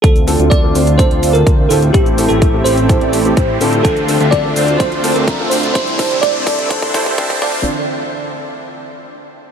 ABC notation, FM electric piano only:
X:1
M:4/4
L:1/16
Q:1/4=126
K:Dm
V:1 name="FM electric piano"
A4 d4 c3 B3 A2 | G3 A3 c8 z2 | A4 d4 c3 B3 c2 | c4 d4 c6 d2 |
z16 |]